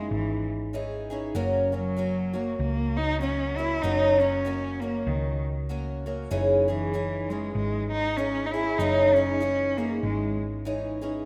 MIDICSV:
0, 0, Header, 1, 4, 480
1, 0, Start_track
1, 0, Tempo, 619835
1, 1048, Time_signature, 4, 2, 24, 8
1, 8714, End_track
2, 0, Start_track
2, 0, Title_t, "Twelve-string acoustic guitar"
2, 0, Program_c, 0, 25
2, 0, Note_on_c, 0, 52, 36
2, 0, Note_on_c, 0, 61, 34
2, 0, Note_on_c, 0, 63, 42
2, 0, Note_on_c, 0, 68, 39
2, 558, Note_off_c, 0, 52, 0
2, 567, Note_off_c, 0, 68, 0
2, 567, Note_on_c, 0, 52, 53
2, 569, Note_off_c, 0, 61, 0
2, 570, Note_off_c, 0, 63, 0
2, 572, Note_on_c, 0, 61, 50
2, 578, Note_on_c, 0, 63, 60
2, 580, Note_on_c, 0, 68, 72
2, 843, Note_off_c, 0, 68, 0
2, 851, Note_off_c, 0, 52, 0
2, 851, Note_off_c, 0, 63, 0
2, 852, Note_on_c, 0, 68, 52
2, 853, Note_off_c, 0, 61, 0
2, 860, Note_on_c, 0, 63, 52
2, 865, Note_on_c, 0, 61, 46
2, 872, Note_on_c, 0, 52, 44
2, 1043, Note_off_c, 0, 61, 0
2, 1044, Note_on_c, 0, 42, 72
2, 1044, Note_on_c, 0, 49, 70
2, 1047, Note_off_c, 0, 52, 0
2, 1048, Note_off_c, 0, 68, 0
2, 1049, Note_off_c, 0, 63, 0
2, 1050, Note_on_c, 0, 54, 76
2, 1050, Note_on_c, 0, 58, 80
2, 1052, Note_on_c, 0, 61, 81
2, 1054, Note_on_c, 0, 66, 80
2, 1323, Note_off_c, 0, 66, 0
2, 1328, Note_off_c, 0, 42, 0
2, 1329, Note_off_c, 0, 49, 0
2, 1329, Note_off_c, 0, 61, 0
2, 1332, Note_off_c, 0, 54, 0
2, 1332, Note_off_c, 0, 58, 0
2, 1333, Note_on_c, 0, 66, 45
2, 1338, Note_on_c, 0, 61, 47
2, 1344, Note_on_c, 0, 58, 37
2, 1348, Note_on_c, 0, 54, 35
2, 1513, Note_off_c, 0, 54, 0
2, 1519, Note_off_c, 0, 58, 0
2, 1522, Note_on_c, 0, 54, 48
2, 1527, Note_off_c, 0, 61, 0
2, 1528, Note_off_c, 0, 66, 0
2, 1528, Note_on_c, 0, 58, 51
2, 1536, Note_on_c, 0, 61, 60
2, 1541, Note_on_c, 0, 66, 58
2, 1799, Note_off_c, 0, 66, 0
2, 1803, Note_off_c, 0, 61, 0
2, 1807, Note_off_c, 0, 54, 0
2, 1808, Note_on_c, 0, 66, 42
2, 1809, Note_off_c, 0, 58, 0
2, 1812, Note_on_c, 0, 61, 39
2, 1818, Note_on_c, 0, 58, 38
2, 1823, Note_on_c, 0, 54, 39
2, 2474, Note_off_c, 0, 54, 0
2, 2482, Note_off_c, 0, 58, 0
2, 2483, Note_on_c, 0, 54, 50
2, 2485, Note_off_c, 0, 66, 0
2, 2492, Note_on_c, 0, 58, 47
2, 2493, Note_off_c, 0, 61, 0
2, 2497, Note_on_c, 0, 61, 49
2, 2503, Note_on_c, 0, 66, 56
2, 2766, Note_off_c, 0, 66, 0
2, 2768, Note_off_c, 0, 54, 0
2, 2769, Note_off_c, 0, 61, 0
2, 2772, Note_off_c, 0, 58, 0
2, 2775, Note_on_c, 0, 66, 48
2, 2778, Note_on_c, 0, 61, 43
2, 2783, Note_on_c, 0, 58, 41
2, 2788, Note_on_c, 0, 54, 37
2, 2964, Note_off_c, 0, 54, 0
2, 2966, Note_off_c, 0, 58, 0
2, 2969, Note_off_c, 0, 66, 0
2, 2969, Note_on_c, 0, 42, 67
2, 2970, Note_off_c, 0, 61, 0
2, 2971, Note_on_c, 0, 49, 67
2, 2974, Note_on_c, 0, 54, 69
2, 2975, Note_on_c, 0, 58, 66
2, 2979, Note_on_c, 0, 66, 66
2, 2981, Note_on_c, 0, 61, 69
2, 3241, Note_off_c, 0, 66, 0
2, 3247, Note_off_c, 0, 61, 0
2, 3250, Note_off_c, 0, 42, 0
2, 3251, Note_on_c, 0, 66, 42
2, 3252, Note_off_c, 0, 49, 0
2, 3253, Note_off_c, 0, 54, 0
2, 3254, Note_off_c, 0, 58, 0
2, 3257, Note_on_c, 0, 61, 40
2, 3262, Note_on_c, 0, 58, 38
2, 3269, Note_on_c, 0, 54, 37
2, 3435, Note_off_c, 0, 54, 0
2, 3443, Note_off_c, 0, 58, 0
2, 3444, Note_on_c, 0, 54, 49
2, 3447, Note_off_c, 0, 66, 0
2, 3448, Note_off_c, 0, 61, 0
2, 3452, Note_on_c, 0, 58, 58
2, 3457, Note_on_c, 0, 61, 53
2, 3464, Note_on_c, 0, 66, 61
2, 3721, Note_off_c, 0, 66, 0
2, 3726, Note_off_c, 0, 61, 0
2, 3728, Note_off_c, 0, 54, 0
2, 3730, Note_on_c, 0, 66, 45
2, 3732, Note_off_c, 0, 58, 0
2, 3736, Note_on_c, 0, 61, 40
2, 3742, Note_on_c, 0, 58, 37
2, 3744, Note_on_c, 0, 54, 36
2, 4399, Note_off_c, 0, 54, 0
2, 4403, Note_off_c, 0, 58, 0
2, 4407, Note_off_c, 0, 66, 0
2, 4408, Note_on_c, 0, 54, 54
2, 4412, Note_on_c, 0, 58, 54
2, 4416, Note_off_c, 0, 61, 0
2, 4419, Note_on_c, 0, 61, 61
2, 4423, Note_on_c, 0, 66, 54
2, 4683, Note_off_c, 0, 66, 0
2, 4690, Note_off_c, 0, 54, 0
2, 4690, Note_off_c, 0, 61, 0
2, 4692, Note_on_c, 0, 66, 50
2, 4693, Note_off_c, 0, 58, 0
2, 4699, Note_on_c, 0, 61, 46
2, 4701, Note_on_c, 0, 58, 50
2, 4708, Note_on_c, 0, 54, 40
2, 4879, Note_off_c, 0, 61, 0
2, 4883, Note_on_c, 0, 42, 70
2, 4885, Note_off_c, 0, 54, 0
2, 4886, Note_off_c, 0, 58, 0
2, 4886, Note_on_c, 0, 49, 75
2, 4888, Note_off_c, 0, 66, 0
2, 4888, Note_on_c, 0, 52, 85
2, 4889, Note_on_c, 0, 61, 76
2, 4892, Note_on_c, 0, 68, 77
2, 4893, Note_on_c, 0, 63, 75
2, 5163, Note_off_c, 0, 68, 0
2, 5168, Note_off_c, 0, 42, 0
2, 5168, Note_off_c, 0, 63, 0
2, 5170, Note_off_c, 0, 49, 0
2, 5171, Note_off_c, 0, 52, 0
2, 5171, Note_off_c, 0, 61, 0
2, 5172, Note_on_c, 0, 68, 48
2, 5177, Note_on_c, 0, 63, 43
2, 5185, Note_on_c, 0, 61, 43
2, 5189, Note_on_c, 0, 52, 41
2, 5361, Note_off_c, 0, 52, 0
2, 5366, Note_off_c, 0, 61, 0
2, 5368, Note_off_c, 0, 68, 0
2, 5371, Note_off_c, 0, 63, 0
2, 5371, Note_on_c, 0, 52, 47
2, 5375, Note_on_c, 0, 61, 54
2, 5381, Note_on_c, 0, 63, 60
2, 5385, Note_on_c, 0, 68, 59
2, 5645, Note_off_c, 0, 68, 0
2, 5652, Note_off_c, 0, 52, 0
2, 5652, Note_off_c, 0, 63, 0
2, 5654, Note_on_c, 0, 68, 44
2, 5655, Note_off_c, 0, 61, 0
2, 5661, Note_on_c, 0, 63, 40
2, 5664, Note_on_c, 0, 61, 42
2, 5669, Note_on_c, 0, 52, 36
2, 6321, Note_off_c, 0, 52, 0
2, 6329, Note_off_c, 0, 63, 0
2, 6330, Note_on_c, 0, 52, 46
2, 6331, Note_off_c, 0, 68, 0
2, 6334, Note_off_c, 0, 61, 0
2, 6337, Note_on_c, 0, 61, 59
2, 6338, Note_on_c, 0, 63, 60
2, 6346, Note_on_c, 0, 68, 54
2, 6602, Note_off_c, 0, 68, 0
2, 6611, Note_on_c, 0, 68, 53
2, 6613, Note_off_c, 0, 52, 0
2, 6617, Note_off_c, 0, 61, 0
2, 6617, Note_off_c, 0, 63, 0
2, 6624, Note_on_c, 0, 61, 42
2, 6629, Note_on_c, 0, 52, 42
2, 6806, Note_off_c, 0, 52, 0
2, 6809, Note_off_c, 0, 68, 0
2, 6810, Note_off_c, 0, 61, 0
2, 6811, Note_on_c, 0, 42, 62
2, 6812, Note_on_c, 0, 49, 68
2, 6815, Note_on_c, 0, 52, 70
2, 6819, Note_on_c, 0, 61, 68
2, 6819, Note_on_c, 0, 63, 72
2, 6824, Note_on_c, 0, 68, 79
2, 7084, Note_off_c, 0, 68, 0
2, 7089, Note_off_c, 0, 63, 0
2, 7092, Note_off_c, 0, 61, 0
2, 7093, Note_on_c, 0, 68, 49
2, 7094, Note_off_c, 0, 42, 0
2, 7095, Note_off_c, 0, 49, 0
2, 7096, Note_off_c, 0, 52, 0
2, 7099, Note_on_c, 0, 63, 37
2, 7101, Note_on_c, 0, 61, 41
2, 7110, Note_on_c, 0, 52, 38
2, 7274, Note_off_c, 0, 52, 0
2, 7282, Note_off_c, 0, 61, 0
2, 7283, Note_on_c, 0, 52, 52
2, 7287, Note_off_c, 0, 63, 0
2, 7291, Note_off_c, 0, 68, 0
2, 7292, Note_on_c, 0, 61, 56
2, 7296, Note_on_c, 0, 63, 55
2, 7302, Note_on_c, 0, 68, 63
2, 7564, Note_off_c, 0, 68, 0
2, 7570, Note_off_c, 0, 63, 0
2, 7571, Note_off_c, 0, 52, 0
2, 7573, Note_on_c, 0, 68, 49
2, 7575, Note_off_c, 0, 61, 0
2, 7579, Note_on_c, 0, 63, 44
2, 7586, Note_on_c, 0, 61, 38
2, 7589, Note_on_c, 0, 52, 36
2, 8240, Note_off_c, 0, 52, 0
2, 8249, Note_on_c, 0, 52, 57
2, 8251, Note_off_c, 0, 63, 0
2, 8252, Note_off_c, 0, 68, 0
2, 8255, Note_off_c, 0, 61, 0
2, 8258, Note_on_c, 0, 61, 64
2, 8260, Note_on_c, 0, 63, 69
2, 8265, Note_on_c, 0, 68, 57
2, 8521, Note_off_c, 0, 68, 0
2, 8526, Note_off_c, 0, 63, 0
2, 8530, Note_on_c, 0, 68, 53
2, 8532, Note_off_c, 0, 61, 0
2, 8535, Note_off_c, 0, 52, 0
2, 8536, Note_on_c, 0, 63, 51
2, 8541, Note_on_c, 0, 61, 51
2, 8545, Note_on_c, 0, 52, 45
2, 8714, Note_off_c, 0, 52, 0
2, 8714, Note_off_c, 0, 61, 0
2, 8714, Note_off_c, 0, 63, 0
2, 8714, Note_off_c, 0, 68, 0
2, 8714, End_track
3, 0, Start_track
3, 0, Title_t, "Cello"
3, 0, Program_c, 1, 42
3, 0, Note_on_c, 1, 56, 73
3, 97, Note_off_c, 1, 56, 0
3, 102, Note_on_c, 1, 52, 59
3, 359, Note_off_c, 1, 52, 0
3, 1349, Note_on_c, 1, 54, 83
3, 1817, Note_on_c, 1, 58, 79
3, 1829, Note_off_c, 1, 54, 0
3, 1999, Note_off_c, 1, 58, 0
3, 2004, Note_on_c, 1, 58, 83
3, 2297, Note_on_c, 1, 63, 96
3, 2309, Note_off_c, 1, 58, 0
3, 2488, Note_off_c, 1, 63, 0
3, 2493, Note_on_c, 1, 61, 82
3, 2763, Note_on_c, 1, 64, 91
3, 2775, Note_off_c, 1, 61, 0
3, 2957, Note_on_c, 1, 63, 87
3, 2968, Note_off_c, 1, 64, 0
3, 3248, Note_on_c, 1, 61, 81
3, 3260, Note_off_c, 1, 63, 0
3, 3720, Note_on_c, 1, 58, 79
3, 3732, Note_off_c, 1, 61, 0
3, 3922, Note_on_c, 1, 51, 67
3, 3934, Note_off_c, 1, 58, 0
3, 4207, Note_off_c, 1, 51, 0
3, 5169, Note_on_c, 1, 52, 72
3, 5646, Note_on_c, 1, 56, 77
3, 5657, Note_off_c, 1, 52, 0
3, 5846, Note_off_c, 1, 56, 0
3, 5851, Note_on_c, 1, 56, 77
3, 6113, Note_off_c, 1, 56, 0
3, 6128, Note_on_c, 1, 63, 92
3, 6324, Note_on_c, 1, 61, 90
3, 6336, Note_off_c, 1, 63, 0
3, 6548, Note_on_c, 1, 63, 68
3, 6560, Note_off_c, 1, 61, 0
3, 6597, Note_on_c, 1, 64, 85
3, 6608, Note_off_c, 1, 63, 0
3, 6798, Note_on_c, 1, 63, 87
3, 6810, Note_off_c, 1, 64, 0
3, 7077, Note_on_c, 1, 61, 93
3, 7089, Note_off_c, 1, 63, 0
3, 7569, Note_on_c, 1, 58, 87
3, 7580, Note_off_c, 1, 61, 0
3, 7769, Note_off_c, 1, 58, 0
3, 7773, Note_on_c, 1, 56, 70
3, 8037, Note_off_c, 1, 56, 0
3, 8714, End_track
4, 0, Start_track
4, 0, Title_t, "Picked electric bass"
4, 0, Program_c, 2, 34
4, 85, Note_on_c, 2, 32, 82
4, 1015, Note_off_c, 2, 32, 0
4, 1044, Note_on_c, 2, 30, 81
4, 1973, Note_off_c, 2, 30, 0
4, 2009, Note_on_c, 2, 37, 92
4, 2936, Note_off_c, 2, 37, 0
4, 2971, Note_on_c, 2, 30, 79
4, 3897, Note_off_c, 2, 30, 0
4, 3924, Note_on_c, 2, 37, 83
4, 4855, Note_off_c, 2, 37, 0
4, 4888, Note_on_c, 2, 30, 76
4, 5818, Note_off_c, 2, 30, 0
4, 5847, Note_on_c, 2, 32, 86
4, 6779, Note_off_c, 2, 32, 0
4, 6805, Note_on_c, 2, 30, 81
4, 7739, Note_off_c, 2, 30, 0
4, 7769, Note_on_c, 2, 32, 87
4, 8702, Note_off_c, 2, 32, 0
4, 8714, End_track
0, 0, End_of_file